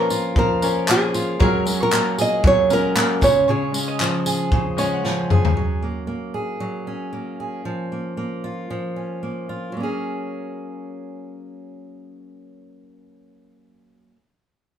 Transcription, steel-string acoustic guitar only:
0.00 0.36 F3 medium
0.00 0.89 A#3 medium
0.00 0.62 C#4 medium
0.11 1.14 F4 medium
0.37 1.40 F3 medium
0.63 1.65 C#4 medium
0.89 1.46 A#3 medium
1.15 1.46 F4 medium
1.40 2.42 F#3 medium
1.66 2.70 C#4 medium
1.92 2.95 A#3 medium
2.18 4.26 G#4 medium
2.44 3.28 F#3 medium
2.70 3.74 C#4 medium
2.96 3.28 A#3 medium
3.21 3.48 C#3 medium
3.49 4.52 C#3 medium
3.75 4.78 C#4 medium
4.00 5.03 F3 medium
4.26 5.31 G#4 medium
4.53 5.63 C#3 medium
4.78 6.87 C#4 medium
5.05 5.56 F3 medium
5.31 5.85 G#4 medium
5.57 6.59 F#3 medium
5.82 6.07 A#3 soft
6.07 7.12 A#3 medium
6.34 7.39 G#4 medium
6.60 7.65 F#3 medium
6.87 8.96 C#4 medium
7.13 7.92 A#3 medium
7.40 7.71 G#4 soft
7.65 8.69 F3 medium
7.92 8.17 A#3 soft
8.17 9.22 A#3 medium
8.44 9.48 F4 medium
8.70 9.72 F3 medium
8.96 9.80 C#4 soft
9.23 9.76 A#3 soft
9.49 9.81 F4 medium
9.72 14.11 F#3 medium
9.77 14.16 A#3 medium
9.77 14.19 C#4 medium
9.83 14.22 G#4 medium

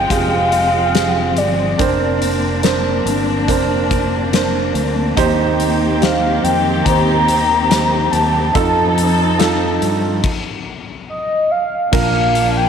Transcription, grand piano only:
0.00 0.10 F4 medium
0.00 0.11 G4 medium
0.00 0.11 G#4 medium
0.10 0.90 F4 medium
0.10 0.91 G4 medium
0.10 0.91 G#4 medium
0.94 1.75 F4 medium
0.94 1.75 G4 soft
0.94 1.75 G#4 medium
1.78 2.59 D4 medium
1.78 2.59 A#4 medium
1.78 2.60 C5 medium
2.63 3.44 D4 medium
2.63 3.44 A#4 medium
2.63 3.44 C5 medium
3.47 4.28 D4 medium
3.47 4.29 A#4 medium
3.47 4.29 C5 medium
4.32 5.13 D4 medium
4.32 5.13 A#4 medium
4.32 5.14 C5 medium
5.17 6.40 D#3 medium
5.17 5.97 D#4 loud
5.17 5.98 G4 medium
5.17 5.98 C5 loud
6.01 6.81 D#4 medium
6.01 6.82 G4 medium
6.01 6.82 C5 medium
6.85 7.66 D#4 medium
6.85 7.66 G4 medium
6.85 7.67 C5 medium
7.70 8.51 D#4 medium
7.70 8.51 G4 medium
7.70 8.51 C5 medium
8.54 9.35 D#4 medium
8.54 9.35 F4 medium
8.54 9.35 A4 medium
9.38 10.19 D#4 medium
9.38 10.19 F4 medium
9.38 10.20 A4 medium
11.91 12.69 A#2 medium
11.91 12.69 D4 medium
11.91 12.69 F4 medium
11.91 12.69 A#4 medium

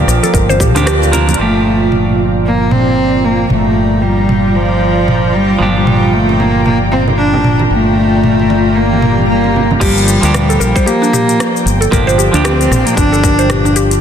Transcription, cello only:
1.39 2.14 A3 medium
2.46 2.73 A#3 medium
2.71 3.26 C4 medium
3.24 3.50 A#3 medium
3.51 4.04 A3 medium
4.02 4.57 G3 medium
4.55 5.36 F3 medium
5.34 5.60 G3 medium
5.60 5.70 G3 medium
5.68 5.78 F3 medium
5.76 6.14 G3 medium
6.13 6.41 A3 medium
6.40 6.65 A#3 medium
6.66 6.77 A#3 medium
6.92 7.04 C4 medium
7.18 7.57 D4 loud
7.72 8.77 A3 medium
8.76 9.28 A#3 loud
9.28 9.67 A#3 medium
9.81 10.88 G3 loud
10.86 11.65 A#3 loud
12.45 12.86 C4 medium
12.85 12.96 A#3 medium
12.95 13.75 D4 loud

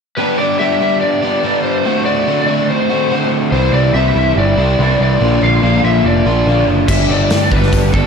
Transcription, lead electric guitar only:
0.17 0.37 B4 medium
0.38 0.58 D5 medium
0.59 1.00 E5 medium
1.01 1.62 D5 medium
1.63 2.05 C5 medium
2.05 2.46 D5 medium
2.47 2.69 D5 medium
2.70 3.28 C5 medium
3.52 3.73 C5 medium
3.73 3.94 D5 medium
3.94 4.37 E5 medium
4.38 5.01 D5 medium
5.02 5.43 D5 medium
5.44 5.84 F5 medium
5.85 6.06 E5 medium
6.06 6.64 D5 medium
6.89 7.10 E5 medium
7.11 7.53 D5 medium
7.52 7.93 B4 medium
7.93 8.07 A4 medium

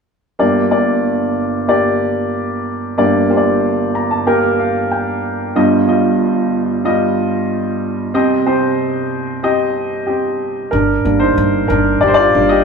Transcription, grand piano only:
0.39 2.94 G1 soft
0.39 2.94 G2 soft
0.39 0.69 A#3 medium
0.39 0.69 G4 medium
0.39 0.69 D5 medium
0.71 1.61 A#3 soft
0.71 1.62 G4 soft
0.71 1.62 D5 medium
1.68 2.88 A#3 medium
1.68 2.89 G4 medium
1.68 2.89 D5 medium
2.98 5.52 G1 medium
2.98 5.52 G2 medium
2.98 3.28 A#3 medium
2.98 3.28 G4 medium
2.98 3.28 D5 medium
3.30 4.20 A#3 medium
3.30 4.20 G4 soft
3.30 3.37 C5 soft
3.37 4.24 D5 medium
3.95 4.10 A#5 medium
4.11 4.26 A5 medium
4.27 5.47 A#3 medium
4.27 5.47 G4 medium
4.27 5.47 A#4 medium
4.27 4.57 G5 soft
4.59 4.89 F5 medium
4.91 5.52 G5 soft
5.56 8.11 G1 medium
5.56 8.11 G2 medium
5.56 5.86 G3 medium
5.56 5.86 F4 medium
5.56 5.86 D#5 medium
5.88 6.78 G3 medium
5.88 6.79 F4 soft
5.88 6.79 D#5 medium
6.85 8.05 G3 medium
6.85 8.05 F4 medium
6.85 8.06 D#5 medium
8.14 10.69 C2 medium
8.14 10.69 C3 medium
8.14 8.45 C4 medium
8.14 8.45 G4 medium
8.14 8.45 D#5 medium
8.46 9.37 C4 medium
8.46 9.37 G4 medium
8.46 9.37 C5 medium
9.43 10.07 C4 medium
9.43 10.05 G4 medium
9.43 10.64 D#5 medium
10.07 10.69 C4 soft
10.07 10.74 G4 medium
10.71 11.04 D4 medium
10.71 11.22 A#4 medium
11.05 11.98 G3 soft
11.05 11.98 A#3 soft
11.05 11.69 D4 soft
11.20 11.67 D#4 medium
11.20 11.71 C5 medium
11.68 11.78 D4 medium
11.68 11.75 A#4 medium
12.01 12.10 G4 medium
12.01 12.08 D5 medium
12.08 12.16 C5 medium
12.14 12.49 F4 medium
12.14 12.47 D5 medium
12.34 12.64 G3 soft
12.34 12.64 A#3 soft
12.34 12.64 D4 soft
12.49 12.64 G4 medium
12.49 12.64 D#5 medium

